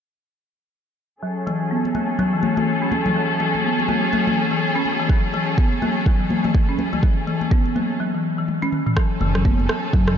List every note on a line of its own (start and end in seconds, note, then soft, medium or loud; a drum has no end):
1.22 7.96 F#3 medium
1.22 1.35 F#3 medium
1.22 7.96 C#4 medium
1.22 7.96 G#4 medium
1.22 7.96 A4 medium
1.47 1.59 E3 medium
1.47 muted conga soft
1.71 1.84 B3 medium
1.85 muted conga soft
1.95 2.09 F#3 medium
1.95 high conga medium
2.19 2.32 F#3 medium
2.19 muted conga soft
2.19 low conga loud
2.34 2.43 E3 medium
2.43 high conga medium
2.57 2.67 E3 medium
2.57 muted conga soft
2.57 high conga loud
2.82 2.91 C#4 medium
2.92 muted conga medium
2.92 high conga medium
3.06 3.15 E3 medium
3.06 high conga medium
3.06 low conga loud
3.16 3.29 F#3 medium
3.40 3.53 E3 medium
3.40 muted conga soft
3.55 high conga medium
3.64 3.77 B3 medium
3.79 muted conga soft
3.89 4.02 F#3 medium
3.89 high conga medium
4.13 4.26 F#3 medium
4.13 muted conga soft
4.13 high conga medium
4.27 4.37 E3 medium
4.27 high conga loud
4.51 4.60 E3 medium
4.51 muted conga soft
4.75 4.84 C#4 medium
4.86 muted conga soft
5.00 5.09 E3 medium
5.09 5.22 F#3 medium
5.09 kick loud
5.34 5.47 E3 medium
5.34 muted conga soft
5.58 5.71 B3 medium
5.58 kick loud
5.72 muted conga soft
5.82 5.96 F#3 medium
5.82 high conga medium
6.06 6.19 F#3 medium
6.06 kick loud
6.06 muted conga soft
6.06 low conga medium
6.20 6.30 E3 medium
6.30 high conga loud
6.44 6.54 E3 medium
6.44 muted conga soft
6.44 high conga loud
6.55 kick loud
6.69 6.78 C#4 medium
6.78 muted conga soft
6.78 high conga loud
6.93 7.02 E3 medium
6.93 high conga medium
6.93 low conga medium
7.03 7.16 F#3 medium
7.03 kick loud
7.27 7.40 E3 medium
7.27 muted conga soft
7.41 high conga medium
7.51 7.64 B3 medium
7.51 kick loud
7.65 muted conga soft
7.76 7.89 F#3 medium
7.76 high conga medium
8.00 8.13 F#3 medium
8.14 8.24 E3 medium
8.39 8.47 E3 medium
8.48 high tom medium
8.62 8.71 C#4 medium
8.62 high tom medium
8.72 mid tom medium
8.87 8.96 E3 medium
8.87 mid tom medium
8.97 9.10 F#3 medium
8.97 10.18 F#3 medium
8.97 10.18 C#4 medium
8.97 10.18 G#4 medium
8.97 10.18 A4 medium
8.97 kick loud
8.97 cross-stick medium
9.21 9.56 F#1 loud
9.21 9.34 E3 medium
9.21 muted conga medium
9.35 cross-stick medium
9.35 low conga loud
9.45 9.58 B3 medium
9.45 kick loud
9.45 high conga medium
9.59 9.68 F#1 loud
9.59 muted conga soft
9.69 9.83 F#3 medium
9.69 cross-stick medium
9.93 10.18 F#1 loud
9.93 10.06 F#3 medium
9.93 kick loud
9.93 muted conga soft
9.93 high conga medium
9.93 low conga medium
10.08 10.17 E3 medium
10.08 cross-stick medium